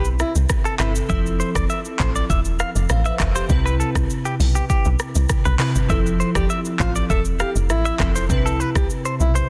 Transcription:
0.00 0.23 B1 loud
0.00 0.79 C3 medium
0.00 0.80 C4 medium
0.00 0.80 E4 medium
0.00 1.12 B4 loud
0.00 downlifter medium
0.05 shaker medium
0.19 0.33 E4 medium
0.19 cross-stick medium
0.19 shaker medium
0.35 0.46 C2 medium
0.35 shaker medium
0.49 kick medium
0.49 cross-stick loud
0.49 shaker medium
0.65 0.74 A4 medium
0.65 shaker soft
0.79 1.02 G1 loud
0.79 0.99 C3 medium
0.79 1.00 C4 medium
0.79 0.93 E4 medium
0.79 1.00 E4 medium
0.79 1.00 A4 medium
0.79 0.89 B4 medium
0.79 cross-stick loud
0.79 clap loud
0.79 shaker medium
0.96 shaker loud
1.09 1.43 F1 loud
1.09 1.88 F3 medium
1.09 1.88 C4 medium
1.09 1.89 E4 medium
1.09 1.89 A4 loud
1.09 1.19 E5 medium
1.09 kick loud
1.09 shaker medium
1.26 shaker soft
1.40 1.49 C5 medium
1.40 shaker medium
1.55 1.66 F1 medium
1.55 1.64 D5 medium
1.55 kick loud
1.55 cross-stick loud
1.55 shaker loud
1.70 1.79 E5 medium
1.70 shaker medium
1.85 shaker medium
2.00 2.21 A1 medium
2.00 2.09 C5 medium
2.00 kick medium
2.00 clap loud
2.00 shaker medium
2.16 2.24 D5 medium
2.16 shaker medium
2.30 2.63 E1 loud
2.30 2.39 E5 medium
2.30 kick medium
2.30 shaker medium
2.45 shaker medium
2.59 2.69 F5 medium
2.59 cross-stick medium
2.59 shaker medium
2.75 2.86 F1 loud
2.75 shaker loud
2.89 3.11 A1 loud
2.89 3.05 C5 medium
2.89 3.05 F5 medium
2.89 cross-stick loud
2.89 shaker medium
3.05 3.34 B4 medium
3.05 3.34 E5 medium
3.05 3.14 E5 medium
3.05 shaker soft
3.20 3.42 F1 loud
3.20 kick medium
3.20 cross-stick loud
3.20 clap loud
3.20 shaker medium
3.35 3.64 G4 medium
3.35 3.64 C5 medium
3.35 3.44 C5 medium
3.35 shaker loud
3.48 3.83 C2 loud
3.48 4.28 C3 medium
3.48 4.28 C4 medium
3.48 4.29 E4 medium
3.48 4.29 B4 loud
3.48 kick loud
3.48 shaker medium
3.66 3.74 B4 medium
3.66 shaker soft
3.80 3.89 A4 medium
3.80 shaker medium
3.95 4.06 C2 medium
3.95 kick loud
3.95 cross-stick loud
3.95 shaker loud
4.10 shaker medium
4.25 4.34 G4 medium
4.25 shaker medium
4.40 4.62 B1 medium
4.40 open hi-hat medium
4.40 shaker medium
4.55 4.64 G4 medium
4.55 shaker medium
4.70 4.88 G4 medium
4.70 kick loud
4.70 shaker medium
4.85 4.96 B1 medium
4.85 shaker soft
4.99 cross-stick medium
4.99 shaker medium
5.15 5.26 C2 medium
5.15 shaker loud
5.29 kick loud
5.29 cross-stick loud
5.29 shaker medium
5.45 5.56 B1 medium
5.45 5.54 B4 medium
5.45 shaker soft
5.58 5.79 C3 medium
5.58 5.79 C4 medium
5.58 5.80 E4 medium
5.58 5.69 B4 medium
5.58 5.80 B4 loud
5.58 cross-stick loud
5.58 clap loud
5.58 open hi-hat medium
5.58 shaker medium
5.76 5.86 G1 medium
5.76 shaker loud
5.88 6.23 F1 loud
5.88 6.68 F3 medium
5.88 6.68 C4 medium
5.88 6.68 E4 medium
5.88 6.69 A4 loud
5.88 5.99 E5 medium
5.88 kick loud
5.88 shaker medium
6.06 shaker soft
6.20 6.29 C5 medium
6.20 shaker medium
6.35 6.46 F1 loud
6.35 6.48 G4 medium
6.35 6.44 D5 medium
6.35 kick medium
6.35 cross-stick loud
6.35 shaker medium
6.50 6.59 E5 medium
6.50 shaker medium
6.65 shaker medium
6.80 7.02 A1 loud
6.80 6.93 F4 medium
6.80 6.89 C5 medium
6.80 kick medium
6.80 clap medium
6.80 shaker medium
6.96 7.04 D5 medium
6.96 shaker medium
7.10 7.43 E1 loud
7.10 7.23 A4 medium
7.10 7.19 E5 medium
7.10 kick loud
7.10 shaker medium
7.25 shaker medium
7.40 7.53 G4 medium
7.40 7.49 F5 medium
7.40 cross-stick medium
7.40 shaker medium
7.55 7.71 F1 medium
7.55 shaker loud
7.70 7.92 A1 medium
7.70 8.13 E4 medium
7.70 cross-stick medium
7.70 shaker medium
7.85 7.94 E5 medium
7.85 shaker soft
7.98 8.31 F1 loud
7.98 8.19 F3 medium
7.98 8.20 C4 medium
7.98 8.20 E4 medium
7.98 8.20 A4 medium
7.98 kick medium
7.98 cross-stick loud
7.98 clap loud
7.98 shaker medium
8.16 8.24 C5 medium
8.16 shaker loud
8.29 8.63 C2 loud
8.29 9.08 C3 medium
8.29 9.08 C4 medium
8.29 8.37 D4 medium
8.29 9.09 B4 loud
8.29 kick loud
8.29 shaker medium
8.37 9.12 E4 medium
8.46 8.60 A4 medium
8.46 shaker soft
8.60 8.69 B4 medium
8.60 shaker medium
8.75 8.86 C2 medium
8.75 8.88 G4 medium
8.75 kick loud
8.75 cross-stick loud
8.75 shaker loud
8.90 shaker medium
9.05 9.14 C5 medium
9.05 shaker medium
9.20 9.42 B1 medium
9.20 9.33 E4 medium
9.20 shaker medium
9.35 9.49 C5 medium
9.35 shaker medium

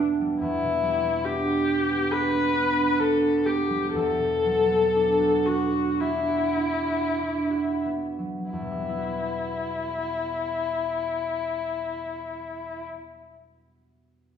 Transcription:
0.00 0.40 E2 soft
0.00 0.44 B2 soft
0.00 0.20 G3 soft
0.00 1.02 B3 soft
0.00 1.24 D4 soft
0.00 3.69 E4 soft
0.21 0.81 G3 soft
0.42 3.93 E2 soft
0.42 1.26 E4 soft
0.63 4.00 B2 soft
0.83 3.69 G3 soft
1.03 1.89 B3 soft
1.25 1.67 D4 soft
1.25 2.13 G4 soft
1.46 3.20 F#4 soft
1.68 2.10 D4 soft
1.90 2.32 B3 soft
2.11 2.53 D4 soft
2.11 3.02 B4 medium
2.33 2.76 B3 soft
2.54 2.99 D4 soft
2.77 3.44 B3 soft
3.00 3.48 A4 soft
3.22 5.19 F#4 soft
3.46 4.68 B3 soft
3.46 3.94 G4 soft
3.70 3.99 G3 soft
3.95 7.85 E2 soft
3.95 5.48 A4 medium
4.19 8.09 B2 soft
4.45 8.18 F#3 soft
4.69 7.84 B3 soft
4.95 5.44 D4 soft
5.20 5.71 F#4 soft
5.45 5.99 D4 soft
5.45 6.02 F#4 soft
5.73 6.27 F#4 soft
6.00 6.56 D4 soft
6.00 7.84 E4 soft
6.28 6.86 F#4 soft
6.57 7.16 D4 soft
6.87 7.49 F#4 soft
7.18 8.57 D4 soft
7.50 8.96 F#4 soft
7.85 8.78 B3 soft
8.19 12.09 F#3 soft
8.50 12.86 E2 soft
8.50 12.84 E4 soft
8.62 12.95 B2 soft
8.71 13.04 G3 soft
8.80 13.13 B3 soft
8.89 13.22 E4 soft
8.98 13.31 F#4 soft

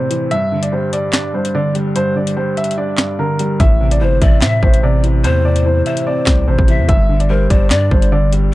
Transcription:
0.00 0.33 A2 medium
0.00 0.33 C3 loud
0.00 0.11 E3 medium
0.00 0.31 C4 medium
0.00 0.29 C5 medium
0.11 0.31 E3 medium
0.11 closed hi-hat medium
0.31 1.32 G2 medium
0.31 0.61 E5 loud
0.31 closed hi-hat medium
0.52 1.53 D3 medium
0.63 0.71 D5 medium
0.63 closed hi-hat medium
0.72 1.73 G3 medium
0.72 0.90 C5 medium
0.93 1.11 D5 medium
0.93 closed hi-hat medium
1.13 2.16 D4 medium
1.13 1.31 D5 medium
1.13 snare loud
1.13 clap loud
1.13 closed hi-hat medium
1.34 1.94 G2 medium
1.34 1.52 C5 medium
1.45 closed hi-hat medium
1.55 2.14 D3 loud
1.55 1.72 D5 medium
1.75 2.35 G3 medium
1.75 closed hi-hat medium
1.96 2.97 G2 medium
1.96 2.13 C5 loud
1.96 closed hi-hat medium
2.16 3.17 D3 medium
2.16 2.34 D5 medium
2.27 closed hi-hat medium
2.37 3.38 G3 medium
2.37 2.54 C5 medium
2.57 2.75 E5 medium
2.57 closed hi-hat soft
2.64 closed hi-hat medium
2.71 closed hi-hat medium
2.78 3.60 D4 medium
2.78 3.16 D5 medium
2.97 3.60 G2 medium
2.97 snare loud
2.97 clap loud
2.97 closed hi-hat medium
3.19 3.60 D3 medium
3.19 3.58 A#4 medium
3.39 3.60 G3 medium
3.39 closed hi-hat medium
3.60 4.02 A1 loud
3.60 4.61 A2 medium
3.60 3.89 E5 loud
3.60 kick loud
3.60 closed hi-hat medium
3.81 4.82 C3 medium
3.91 4.00 D5 medium
3.91 closed hi-hat medium
4.01 4.21 G1 loud
4.01 5.02 E3 medium
4.01 4.20 C5 medium
4.01 4.19 C5 medium
4.22 4.44 A1 loud
4.22 4.41 D5 medium
4.22 4.39 E5 medium
4.22 kick loud
4.22 closed hi-hat medium
4.41 4.62 A2 loud
4.41 5.45 C4 medium
4.41 4.60 E5 medium
4.41 4.81 E5 medium
4.41 snare loud
4.41 clap loud
4.41 closed hi-hat medium
4.63 5.26 A1 loud
4.63 5.23 A2 medium
4.63 4.80 C5 medium
4.63 kick medium
4.74 closed hi-hat medium
4.83 5.43 C3 loud
4.83 5.01 D5 medium
5.04 5.64 E3 medium
5.04 closed hi-hat medium
5.24 5.83 E2 loud
5.24 6.26 A2 medium
5.24 5.42 C5 loud
5.24 5.82 C5 loud
5.24 closed hi-hat medium
5.45 6.46 C3 medium
5.45 5.63 D5 medium
5.56 closed hi-hat medium
5.66 6.67 E3 medium
5.66 5.83 C5 medium
5.86 6.64 C5 medium
5.86 6.04 E5 medium
5.86 closed hi-hat medium
5.97 closed hi-hat medium
6.07 6.89 C4 medium
6.07 6.45 D5 medium
6.26 6.47 C2 loud
6.26 6.89 A2 medium
6.26 kick loud
6.26 snare loud
6.26 clap loud
6.26 closed hi-hat medium
6.48 6.58 A1 loud
6.48 6.89 C3 medium
6.48 6.86 C5 medium
6.59 6.80 A1 loud
6.59 kick loud
6.68 6.89 E3 medium
6.68 6.88 E5 medium
6.68 closed hi-hat medium
6.79 6.88 E2 loud
6.88 7.48 G1 loud
6.88 7.90 G2 medium
6.88 7.18 E5 loud
6.88 kick loud
6.88 closed hi-hat medium
7.09 8.10 D3 medium
7.20 7.28 D5 medium
7.20 closed hi-hat medium
7.30 8.31 G3 medium
7.30 7.49 A#4 medium
7.30 7.47 C5 medium
7.50 7.72 G1 loud
7.50 7.70 C5 medium
7.50 7.68 D5 medium
7.50 kick loud
7.50 closed hi-hat medium
7.70 7.90 G2 loud
7.70 8.54 D4 medium
7.70 8.09 D5 loud
7.70 7.89 D5 medium
7.70 snare loud
7.70 clap loud
7.70 closed hi-hat medium
7.91 8.54 G1 loud
7.91 8.52 G2 medium
7.91 8.09 C5 medium
7.91 kick medium
8.02 closed hi-hat medium
8.12 8.54 D3 loud
8.12 8.30 D5 medium
8.32 8.54 G3 medium
8.32 closed hi-hat medium

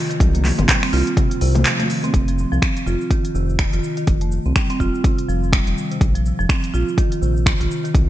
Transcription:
0.10 0.19 D#3 medium
0.10 closed hi-hat soft
0.10 shaker soft
0.20 0.52 C2 loud
0.20 kick loud
0.20 closed hi-hat medium
0.20 low conga loud
0.20 shaker medium
0.34 0.44 A#3 medium
0.34 closed hi-hat soft
0.34 high conga medium
0.34 shaker soft
0.44 clap soft
0.44 open hi-hat loud
0.44 low conga loud
0.44 shaker medium
0.58 0.66 G1 loud
0.58 0.68 C4 medium
0.58 closed hi-hat soft
0.58 mid tom medium
0.58 high conga medium
0.58 shaker soft
0.69 0.77 G3 medium
0.69 finger snap loud
0.69 kick loud
0.69 clap loud
0.69 closed hi-hat medium
0.69 shaker medium
0.83 0.92 C4 loud
0.83 finger snap medium
0.83 open hi-hat medium
0.83 shaker soft
0.93 1.03 C2 loud
0.93 1.06 F4 loud
0.93 open hi-hat medium
0.93 shaker medium
1.07 closed hi-hat soft
1.07 shaker soft
1.17 1.30 C3 medium
1.17 kick loud
1.17 closed hi-hat medium
1.17 mid tom medium
1.17 shaker medium
1.31 closed hi-hat soft
1.31 shaker soft
1.41 1.66 C2 medium
1.41 1.54 C3 loud
1.41 open hi-hat loud
1.41 shaker medium
1.55 closed hi-hat soft
1.55 mid tom medium
1.55 high conga loud
1.55 shaker soft
1.66 1.78 F3 medium
1.66 finger snap loud
1.66 clap loud
1.66 closed hi-hat medium
1.66 shaker medium
1.79 1.89 D#3 medium
1.79 closed hi-hat soft
1.79 high conga loud
1.79 shaker soft
1.90 open hi-hat medium
1.90 shaker medium
2.04 2.13 C4 loud
2.04 closed hi-hat soft
2.04 high conga medium
2.04 shaker soft
2.14 2.46 F1 loud
2.14 kick loud
2.14 closed hi-hat medium
2.14 shaker medium
2.28 2.34 F3 medium
2.28 closed hi-hat soft
2.28 shaker soft
2.39 shaker medium
2.52 2.60 C2 loud
2.52 2.62 F3 medium
2.52 shaker soft
2.62 2.76 C4 medium
2.62 finger snap loud
2.62 kick loud
2.62 closed hi-hat medium
2.62 shaker soft
2.77 closed hi-hat soft
2.77 shaker soft
2.86 2.97 F1 medium
2.86 3.00 F4 medium
2.86 shaker medium
3.01 shaker soft
3.11 3.18 D#3 medium
3.11 kick loud
3.11 closed hi-hat medium
3.11 shaker medium
3.25 closed hi-hat soft
3.25 shaker soft
3.35 3.67 F1 medium
3.35 3.48 C3 medium
3.35 shaker medium
3.49 shaker soft
3.59 finger snap loud
3.59 kick loud
3.59 closed hi-hat medium
3.59 shaker medium
3.73 3.80 F1 medium
3.73 3.79 F4 medium
3.73 closed hi-hat soft
3.73 shaker soft
3.84 shaker medium
3.97 4.06 D#3 medium
3.97 closed hi-hat soft
3.97 shaker soft
4.07 4.39 F1 loud
4.07 kick loud
4.07 closed hi-hat medium
4.07 shaker medium
4.21 4.31 A3 medium
4.21 closed hi-hat soft
4.21 shaker soft
4.32 shaker medium
4.46 4.53 C2 loud
4.46 4.55 C4 medium
4.46 shaker soft
4.56 4.64 G3 medium
4.56 finger snap loud
4.56 kick loud
4.56 closed hi-hat medium
4.56 shaker medium
4.70 4.79 C4 loud
4.70 closed hi-hat soft
4.70 shaker soft
4.80 4.90 F1 loud
4.80 4.93 F4 loud
4.80 kick medium
4.80 shaker medium
4.95 shaker soft
5.04 5.17 C3 medium
5.04 kick loud
5.04 closed hi-hat medium
5.04 shaker medium
5.18 closed hi-hat soft
5.18 shaker soft
5.29 5.60 F1 medium
5.29 5.36 F3 medium
5.29 shaker loud
5.43 shaker soft
5.53 5.60 G3 medium
5.53 finger snap loud
5.53 kick loud
5.53 closed hi-hat medium
5.53 shaker medium
5.67 5.74 F1 medium
5.67 5.76 D#3 medium
5.67 closed hi-hat soft
5.67 shaker soft
5.78 shaker medium
5.91 6.00 C3 medium
5.91 closed hi-hat soft
5.91 shaker soft
6.01 6.33 A#1 loud
6.01 kick loud
6.01 closed hi-hat medium
6.01 shaker medium
6.15 6.21 F3 medium
6.15 closed hi-hat soft
6.15 shaker soft
6.26 shaker loud
6.39 6.47 F1 loud
6.39 6.49 F3 loud
6.39 shaker soft
6.49 6.63 C4 medium
6.49 finger snap loud
6.49 kick loud
6.49 closed hi-hat medium
6.49 shaker medium
6.64 closed hi-hat soft
6.64 shaker soft
6.74 6.84 A#1 medium
6.74 6.87 F4 loud
6.74 shaker loud
6.88 shaker soft
6.98 7.05 D#3 medium
6.98 kick loud
6.98 closed hi-hat medium
6.98 shaker medium
7.12 closed hi-hat soft
7.12 shaker soft
7.22 7.54 A#1 medium
7.22 7.35 C3 medium
7.22 shaker loud
7.37 shaker soft
7.46 7.60 D#3 medium
7.46 finger snap loud
7.46 kick loud
7.46 closed hi-hat medium
7.46 shaker medium
7.60 7.68 A#1 medium
7.60 7.66 F4 medium
7.60 closed hi-hat soft
7.60 shaker soft
7.71 shaker loud
7.84 7.94 D#3 medium
7.84 closed hi-hat soft
7.84 shaker soft
7.95 8.09 C2 loud
7.95 kick loud
7.95 closed hi-hat medium
7.95 shaker medium

